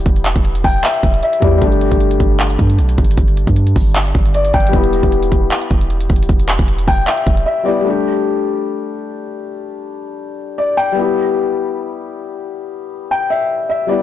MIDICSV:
0, 0, Header, 1, 4, 480
1, 0, Start_track
1, 0, Key_signature, 1, "major"
1, 0, Tempo, 389610
1, 71, Time_signature, 4, 2, 24, 8
1, 17279, End_track
2, 0, Start_track
2, 0, Title_t, "Felt piano"
2, 0, Program_c, 0, 0
2, 0, Control_c, 0, 64, 127
2, 0, Note_on_c, 0, 55, 76
2, 0, Note_on_c, 0, 59, 72
2, 0, Note_on_c, 0, 64, 64
2, 0, Note_on_c, 0, 67, 84
2, 793, Note_on_c, 0, 79, 71
2, 1016, Note_off_c, 0, 79, 0
2, 1029, Note_on_c, 0, 76, 77
2, 1477, Note_off_c, 0, 76, 0
2, 1513, Note_on_c, 0, 76, 69
2, 1674, Note_off_c, 0, 55, 0
2, 1692, Note_off_c, 0, 59, 0
2, 1711, Note_off_c, 0, 64, 0
2, 1725, Note_on_c, 0, 55, 63
2, 1729, Note_off_c, 0, 67, 0
2, 1736, Note_off_c, 0, 76, 0
2, 1744, Note_on_c, 0, 59, 56
2, 1753, Note_on_c, 0, 74, 77
2, 1762, Note_on_c, 0, 64, 56
2, 1781, Note_on_c, 0, 67, 68
2, 1922, Note_off_c, 0, 55, 0
2, 1941, Note_on_c, 0, 55, 81
2, 1976, Note_off_c, 0, 74, 0
2, 1978, Note_on_c, 0, 57, 75
2, 1988, Note_off_c, 0, 59, 0
2, 1997, Note_off_c, 0, 64, 0
2, 2006, Control_c, 0, 64, 0
2, 2007, Note_off_c, 0, 67, 0
2, 2015, Note_on_c, 0, 62, 73
2, 2052, Note_on_c, 0, 67, 91
2, 2249, Control_c, 0, 64, 127
2, 5355, Note_on_c, 0, 74, 82
2, 5577, Note_off_c, 0, 74, 0
2, 5591, Note_on_c, 0, 79, 81
2, 5757, Note_off_c, 0, 55, 0
2, 5775, Note_off_c, 0, 57, 0
2, 5775, Note_on_c, 0, 55, 78
2, 5794, Note_off_c, 0, 62, 0
2, 5812, Note_on_c, 0, 59, 70
2, 5813, Note_off_c, 0, 67, 0
2, 5815, Note_off_c, 0, 79, 0
2, 5847, Control_c, 0, 64, 0
2, 5849, Note_on_c, 0, 64, 66
2, 5886, Note_on_c, 0, 67, 80
2, 6062, Control_c, 0, 64, 127
2, 8473, Note_on_c, 0, 79, 71
2, 8696, Note_off_c, 0, 79, 0
2, 8709, Note_on_c, 0, 76, 74
2, 9157, Note_off_c, 0, 76, 0
2, 9191, Note_on_c, 0, 76, 69
2, 9354, Note_off_c, 0, 55, 0
2, 9373, Note_off_c, 0, 59, 0
2, 9391, Note_off_c, 0, 64, 0
2, 9406, Note_on_c, 0, 55, 61
2, 9410, Note_off_c, 0, 67, 0
2, 9415, Note_off_c, 0, 76, 0
2, 9424, Note_on_c, 0, 59, 57
2, 9433, Note_on_c, 0, 74, 80
2, 9442, Note_on_c, 0, 64, 57
2, 9461, Note_on_c, 0, 67, 66
2, 9602, Note_off_c, 0, 55, 0
2, 9620, Note_on_c, 0, 55, 74
2, 9656, Note_off_c, 0, 74, 0
2, 9658, Note_on_c, 0, 57, 65
2, 9668, Note_off_c, 0, 59, 0
2, 9677, Note_off_c, 0, 64, 0
2, 9686, Note_off_c, 0, 67, 0
2, 9688, Control_c, 0, 64, 0
2, 9695, Note_on_c, 0, 62, 67
2, 9731, Note_on_c, 0, 67, 84
2, 9908, Control_c, 0, 64, 127
2, 13036, Note_on_c, 0, 74, 77
2, 13257, Note_off_c, 0, 74, 0
2, 13272, Note_on_c, 0, 79, 77
2, 13437, Note_off_c, 0, 55, 0
2, 13456, Note_off_c, 0, 57, 0
2, 13456, Note_on_c, 0, 55, 76
2, 13474, Note_off_c, 0, 62, 0
2, 13492, Note_off_c, 0, 67, 0
2, 13493, Note_on_c, 0, 59, 67
2, 13495, Note_off_c, 0, 79, 0
2, 13530, Control_c, 0, 64, 0
2, 13530, Note_on_c, 0, 64, 58
2, 13567, Note_on_c, 0, 67, 77
2, 13739, Control_c, 0, 64, 127
2, 16153, Note_on_c, 0, 79, 69
2, 16376, Note_off_c, 0, 79, 0
2, 16389, Note_on_c, 0, 76, 72
2, 16837, Note_off_c, 0, 76, 0
2, 16872, Note_on_c, 0, 76, 69
2, 17035, Note_off_c, 0, 55, 0
2, 17053, Note_off_c, 0, 59, 0
2, 17072, Note_off_c, 0, 64, 0
2, 17086, Note_on_c, 0, 55, 59
2, 17090, Note_off_c, 0, 67, 0
2, 17095, Note_off_c, 0, 76, 0
2, 17104, Note_on_c, 0, 59, 53
2, 17113, Note_on_c, 0, 74, 76
2, 17123, Note_on_c, 0, 64, 54
2, 17141, Note_on_c, 0, 67, 66
2, 17279, Note_off_c, 0, 55, 0
2, 17279, Note_off_c, 0, 59, 0
2, 17279, Note_off_c, 0, 64, 0
2, 17279, Note_off_c, 0, 67, 0
2, 17279, Note_off_c, 0, 74, 0
2, 17279, End_track
3, 0, Start_track
3, 0, Title_t, "808-style bass"
3, 0, Program_c, 1, 38
3, 73, Note_on_c, 1, 28, 113
3, 425, Note_off_c, 1, 28, 0
3, 440, Note_on_c, 1, 28, 99
3, 778, Note_off_c, 1, 28, 0
3, 792, Note_on_c, 1, 28, 105
3, 1022, Note_off_c, 1, 28, 0
3, 1272, Note_on_c, 1, 28, 112
3, 1502, Note_off_c, 1, 28, 0
3, 1753, Note_on_c, 1, 40, 108
3, 1983, Note_off_c, 1, 40, 0
3, 1992, Note_on_c, 1, 31, 114
3, 2345, Note_off_c, 1, 31, 0
3, 2359, Note_on_c, 1, 31, 100
3, 2698, Note_off_c, 1, 31, 0
3, 2712, Note_on_c, 1, 31, 107
3, 3173, Note_off_c, 1, 31, 0
3, 3192, Note_on_c, 1, 43, 114
3, 3432, Note_on_c, 1, 35, 103
3, 3450, Note_off_c, 1, 43, 0
3, 3660, Note_off_c, 1, 35, 0
3, 3673, Note_on_c, 1, 31, 107
3, 3903, Note_off_c, 1, 31, 0
3, 3912, Note_on_c, 1, 31, 115
3, 4265, Note_off_c, 1, 31, 0
3, 4279, Note_on_c, 1, 43, 99
3, 4618, Note_off_c, 1, 43, 0
3, 4632, Note_on_c, 1, 31, 106
3, 5093, Note_off_c, 1, 31, 0
3, 5112, Note_on_c, 1, 31, 109
3, 5573, Note_off_c, 1, 31, 0
3, 5593, Note_on_c, 1, 31, 102
3, 5823, Note_off_c, 1, 31, 0
3, 5832, Note_on_c, 1, 28, 118
3, 6185, Note_off_c, 1, 28, 0
3, 6199, Note_on_c, 1, 28, 102
3, 6538, Note_off_c, 1, 28, 0
3, 6551, Note_on_c, 1, 28, 102
3, 6782, Note_off_c, 1, 28, 0
3, 7031, Note_on_c, 1, 28, 106
3, 7492, Note_off_c, 1, 28, 0
3, 7513, Note_on_c, 1, 28, 106
3, 7743, Note_off_c, 1, 28, 0
3, 7751, Note_on_c, 1, 28, 114
3, 8104, Note_off_c, 1, 28, 0
3, 8119, Note_on_c, 1, 28, 100
3, 8458, Note_off_c, 1, 28, 0
3, 8472, Note_on_c, 1, 28, 107
3, 8702, Note_off_c, 1, 28, 0
3, 8952, Note_on_c, 1, 28, 113
3, 9183, Note_off_c, 1, 28, 0
3, 17279, End_track
4, 0, Start_track
4, 0, Title_t, "Drums"
4, 72, Note_on_c, 9, 42, 81
4, 73, Note_on_c, 9, 36, 127
4, 195, Note_off_c, 9, 42, 0
4, 196, Note_off_c, 9, 36, 0
4, 201, Note_on_c, 9, 42, 60
4, 311, Note_on_c, 9, 39, 96
4, 315, Note_off_c, 9, 42, 0
4, 315, Note_on_c, 9, 42, 67
4, 434, Note_off_c, 9, 39, 0
4, 438, Note_off_c, 9, 42, 0
4, 439, Note_on_c, 9, 36, 93
4, 442, Note_on_c, 9, 42, 64
4, 552, Note_off_c, 9, 42, 0
4, 552, Note_on_c, 9, 42, 94
4, 563, Note_off_c, 9, 36, 0
4, 675, Note_off_c, 9, 42, 0
4, 680, Note_on_c, 9, 42, 59
4, 792, Note_on_c, 9, 36, 108
4, 794, Note_on_c, 9, 46, 92
4, 803, Note_off_c, 9, 42, 0
4, 916, Note_off_c, 9, 36, 0
4, 917, Note_off_c, 9, 46, 0
4, 1033, Note_on_c, 9, 39, 117
4, 1033, Note_on_c, 9, 42, 83
4, 1156, Note_off_c, 9, 39, 0
4, 1156, Note_off_c, 9, 42, 0
4, 1160, Note_on_c, 9, 42, 51
4, 1272, Note_on_c, 9, 36, 105
4, 1273, Note_off_c, 9, 42, 0
4, 1273, Note_on_c, 9, 42, 72
4, 1395, Note_off_c, 9, 36, 0
4, 1396, Note_off_c, 9, 42, 0
4, 1404, Note_on_c, 9, 42, 62
4, 1513, Note_off_c, 9, 42, 0
4, 1513, Note_on_c, 9, 42, 79
4, 1636, Note_off_c, 9, 42, 0
4, 1641, Note_on_c, 9, 42, 63
4, 1752, Note_off_c, 9, 42, 0
4, 1752, Note_on_c, 9, 42, 75
4, 1753, Note_on_c, 9, 36, 105
4, 1875, Note_off_c, 9, 42, 0
4, 1877, Note_off_c, 9, 36, 0
4, 1992, Note_on_c, 9, 36, 126
4, 1992, Note_on_c, 9, 42, 78
4, 2115, Note_off_c, 9, 36, 0
4, 2115, Note_off_c, 9, 42, 0
4, 2120, Note_on_c, 9, 42, 58
4, 2235, Note_off_c, 9, 42, 0
4, 2235, Note_on_c, 9, 42, 68
4, 2358, Note_off_c, 9, 42, 0
4, 2359, Note_on_c, 9, 36, 93
4, 2361, Note_on_c, 9, 42, 63
4, 2471, Note_off_c, 9, 42, 0
4, 2471, Note_on_c, 9, 42, 93
4, 2482, Note_off_c, 9, 36, 0
4, 2594, Note_off_c, 9, 42, 0
4, 2600, Note_on_c, 9, 42, 61
4, 2712, Note_off_c, 9, 42, 0
4, 2712, Note_on_c, 9, 36, 107
4, 2712, Note_on_c, 9, 42, 89
4, 2835, Note_off_c, 9, 36, 0
4, 2836, Note_off_c, 9, 42, 0
4, 2952, Note_on_c, 9, 39, 114
4, 2952, Note_on_c, 9, 42, 81
4, 3075, Note_off_c, 9, 39, 0
4, 3076, Note_off_c, 9, 42, 0
4, 3079, Note_on_c, 9, 42, 50
4, 3192, Note_off_c, 9, 42, 0
4, 3192, Note_on_c, 9, 36, 104
4, 3192, Note_on_c, 9, 42, 74
4, 3315, Note_off_c, 9, 36, 0
4, 3315, Note_off_c, 9, 42, 0
4, 3324, Note_on_c, 9, 42, 62
4, 3433, Note_off_c, 9, 42, 0
4, 3433, Note_on_c, 9, 42, 78
4, 3556, Note_off_c, 9, 42, 0
4, 3560, Note_on_c, 9, 42, 63
4, 3671, Note_off_c, 9, 42, 0
4, 3671, Note_on_c, 9, 42, 45
4, 3673, Note_on_c, 9, 36, 105
4, 3752, Note_off_c, 9, 42, 0
4, 3752, Note_on_c, 9, 42, 59
4, 3796, Note_off_c, 9, 36, 0
4, 3832, Note_off_c, 9, 42, 0
4, 3832, Note_on_c, 9, 42, 75
4, 3911, Note_off_c, 9, 42, 0
4, 3911, Note_on_c, 9, 42, 81
4, 3912, Note_on_c, 9, 36, 123
4, 4034, Note_off_c, 9, 42, 0
4, 4035, Note_off_c, 9, 36, 0
4, 4040, Note_on_c, 9, 42, 58
4, 4155, Note_off_c, 9, 42, 0
4, 4155, Note_on_c, 9, 42, 69
4, 4278, Note_off_c, 9, 42, 0
4, 4279, Note_on_c, 9, 36, 97
4, 4281, Note_on_c, 9, 42, 62
4, 4391, Note_off_c, 9, 42, 0
4, 4391, Note_on_c, 9, 42, 94
4, 4402, Note_off_c, 9, 36, 0
4, 4514, Note_off_c, 9, 42, 0
4, 4519, Note_on_c, 9, 42, 60
4, 4632, Note_on_c, 9, 36, 108
4, 4632, Note_on_c, 9, 46, 91
4, 4642, Note_off_c, 9, 42, 0
4, 4755, Note_off_c, 9, 36, 0
4, 4755, Note_off_c, 9, 46, 0
4, 4872, Note_on_c, 9, 39, 115
4, 4872, Note_on_c, 9, 42, 80
4, 4995, Note_off_c, 9, 39, 0
4, 4995, Note_off_c, 9, 42, 0
4, 4999, Note_on_c, 9, 42, 51
4, 5111, Note_on_c, 9, 36, 106
4, 5112, Note_off_c, 9, 42, 0
4, 5112, Note_on_c, 9, 42, 74
4, 5235, Note_off_c, 9, 36, 0
4, 5235, Note_off_c, 9, 42, 0
4, 5243, Note_on_c, 9, 42, 64
4, 5352, Note_off_c, 9, 42, 0
4, 5352, Note_on_c, 9, 42, 81
4, 5476, Note_off_c, 9, 42, 0
4, 5479, Note_on_c, 9, 42, 63
4, 5591, Note_off_c, 9, 42, 0
4, 5591, Note_on_c, 9, 42, 46
4, 5593, Note_on_c, 9, 36, 107
4, 5671, Note_off_c, 9, 42, 0
4, 5671, Note_on_c, 9, 42, 61
4, 5716, Note_off_c, 9, 36, 0
4, 5751, Note_off_c, 9, 42, 0
4, 5751, Note_on_c, 9, 42, 76
4, 5831, Note_off_c, 9, 42, 0
4, 5831, Note_on_c, 9, 42, 81
4, 5832, Note_on_c, 9, 36, 126
4, 5954, Note_off_c, 9, 42, 0
4, 5955, Note_off_c, 9, 36, 0
4, 5959, Note_on_c, 9, 42, 61
4, 6075, Note_off_c, 9, 42, 0
4, 6075, Note_on_c, 9, 42, 69
4, 6198, Note_off_c, 9, 42, 0
4, 6199, Note_on_c, 9, 36, 96
4, 6200, Note_on_c, 9, 42, 62
4, 6311, Note_off_c, 9, 42, 0
4, 6311, Note_on_c, 9, 42, 93
4, 6322, Note_off_c, 9, 36, 0
4, 6434, Note_off_c, 9, 42, 0
4, 6439, Note_on_c, 9, 42, 60
4, 6551, Note_on_c, 9, 36, 107
4, 6552, Note_off_c, 9, 42, 0
4, 6552, Note_on_c, 9, 42, 90
4, 6674, Note_off_c, 9, 36, 0
4, 6675, Note_off_c, 9, 42, 0
4, 6791, Note_on_c, 9, 39, 114
4, 6791, Note_on_c, 9, 42, 82
4, 6914, Note_off_c, 9, 39, 0
4, 6915, Note_off_c, 9, 42, 0
4, 6918, Note_on_c, 9, 42, 51
4, 7031, Note_off_c, 9, 42, 0
4, 7031, Note_on_c, 9, 36, 109
4, 7031, Note_on_c, 9, 42, 73
4, 7154, Note_off_c, 9, 36, 0
4, 7154, Note_off_c, 9, 42, 0
4, 7163, Note_on_c, 9, 42, 62
4, 7272, Note_off_c, 9, 42, 0
4, 7272, Note_on_c, 9, 42, 81
4, 7395, Note_off_c, 9, 42, 0
4, 7399, Note_on_c, 9, 42, 61
4, 7511, Note_off_c, 9, 42, 0
4, 7511, Note_on_c, 9, 42, 45
4, 7513, Note_on_c, 9, 36, 109
4, 7592, Note_off_c, 9, 42, 0
4, 7592, Note_on_c, 9, 42, 59
4, 7636, Note_off_c, 9, 36, 0
4, 7672, Note_off_c, 9, 42, 0
4, 7672, Note_on_c, 9, 42, 78
4, 7751, Note_off_c, 9, 42, 0
4, 7751, Note_on_c, 9, 42, 81
4, 7752, Note_on_c, 9, 36, 127
4, 7874, Note_off_c, 9, 42, 0
4, 7875, Note_off_c, 9, 36, 0
4, 7880, Note_on_c, 9, 42, 57
4, 7991, Note_on_c, 9, 39, 94
4, 7995, Note_off_c, 9, 42, 0
4, 7995, Note_on_c, 9, 42, 69
4, 8114, Note_off_c, 9, 39, 0
4, 8118, Note_off_c, 9, 42, 0
4, 8119, Note_on_c, 9, 36, 96
4, 8121, Note_on_c, 9, 42, 62
4, 8231, Note_off_c, 9, 42, 0
4, 8231, Note_on_c, 9, 42, 93
4, 8242, Note_off_c, 9, 36, 0
4, 8354, Note_off_c, 9, 42, 0
4, 8359, Note_on_c, 9, 42, 60
4, 8472, Note_on_c, 9, 36, 105
4, 8473, Note_on_c, 9, 46, 87
4, 8483, Note_off_c, 9, 42, 0
4, 8595, Note_off_c, 9, 36, 0
4, 8596, Note_off_c, 9, 46, 0
4, 8712, Note_on_c, 9, 39, 115
4, 8712, Note_on_c, 9, 42, 81
4, 8835, Note_off_c, 9, 39, 0
4, 8836, Note_off_c, 9, 42, 0
4, 8839, Note_on_c, 9, 42, 51
4, 8952, Note_on_c, 9, 36, 110
4, 8953, Note_off_c, 9, 42, 0
4, 8953, Note_on_c, 9, 42, 72
4, 9075, Note_off_c, 9, 36, 0
4, 9076, Note_off_c, 9, 42, 0
4, 9084, Note_on_c, 9, 42, 61
4, 9207, Note_off_c, 9, 42, 0
4, 17279, End_track
0, 0, End_of_file